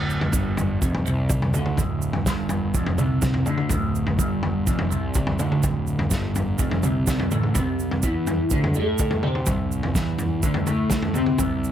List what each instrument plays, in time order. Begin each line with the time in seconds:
Already playing: picked electric bass D1, clean electric guitar D2, synth drone D2 A2
0.10 shaker
0.21 floor tom
0.33 picked electric bass G1, clean electric guitar G2, kick, shaker
0.57 floor tom, shaker
0.82 picked electric bass F1, clean electric guitar F2, kick, shaker
0.95 floor tom
1.06 picked electric bass C2, clean electric guitar C3, shaker
1.30 kick, mid tom, shaker
1.42 floor tom
1.54 picked electric bass D2, clean electric guitar D3, mid tom, shaker
1.66 mid tom
1.77 picked electric bass D1, clean electric guitar D2, kick, floor tom, shaker
2.02 shaker
2.13 floor tom
2.26 picked electric bass G1, clean electric guitar G2, kick, snare, shaker
2.49 floor tom, shaker
2.74 picked electric bass F1, clean electric guitar F2, kick, shaker
2.86 floor tom
2.98 picked electric bass C2, clean electric guitar C3, mid tom, shaker
3.22 kick, snare, mid tom, shaker
3.34 floor tom
3.46 picked electric bass D2, clean electric guitar D3, mid tom, shaker
3.58 mid tom
3.69 picked electric bass D1, clean electric guitar D2, kick, floor tom, shaker
3.95 shaker
4.07 floor tom
4.19 picked electric bass G1, clean electric guitar G2, kick, shaker
4.43 floor tom
4.67 picked electric bass F1, clean electric guitar F2, kick, shaker
4.79 floor tom
4.91 picked electric bass C2, clean electric guitar C3, shaker
5.14 kick, mid tom, shaker
5.27 floor tom
5.39 picked electric bass D2, clean electric guitar D3, mid tom, shaker
5.52 mid tom
5.63 picked electric bass D1, clean electric guitar D2, kick, floor tom, shaker
5.87 shaker
5.99 floor tom
6.10 picked electric bass G1, clean electric guitar G2, kick, snare, shaker
6.35 floor tom, shaker
6.58 picked electric bass F1, clean electric guitar F2, kick, shaker
6.71 floor tom
6.83 picked electric bass C2, clean electric guitar C3, mid tom, shaker
7.07 picked electric bass C2, clean electric guitar C3, kick, snare, mid tom, shaker
7.20 floor tom
7.31 picked electric bass A1, clean electric guitar A2, mid tom, shaker
7.43 mid tom
7.55 picked electric bass C2, synth drone D2 A2, clean electric guitar C3, kick, floor tom, shaker
7.79 shaker
7.91 floor tom
8.03 picked electric bass E2, clean electric guitar E3, kick, shaker
8.27 floor tom, shaker
8.50 picked electric bass D2, clean electric guitar D3, kick, shaker
8.64 floor tom
8.74 picked electric bass A2, clean electric guitar A3, shaker
8.98 kick, mid tom, shaker
9.11 floor tom
9.23 picked electric bass C3, clean electric guitar C4, mid tom
9.35 mid tom
9.46 picked electric bass C2, clean electric guitar C3, kick, floor tom, shaker
9.72 shaker
9.83 floor tom
9.95 picked electric bass E2, clean electric guitar E3, kick, snare, shaker
10.19 floor tom, shaker
10.43 picked electric bass D2, clean electric guitar D3, kick, shaker
10.54 floor tom
10.67 picked electric bass A2, clean electric guitar A3, mid tom, shaker
10.90 kick, snare, mid tom, shaker
11.03 floor tom
11.14 picked electric bass C3, clean electric guitar C4, mid tom, shaker
11.26 mid tom
11.38 picked electric bass C2, clean electric guitar C3, kick, floor tom, shaker
11.64 shaker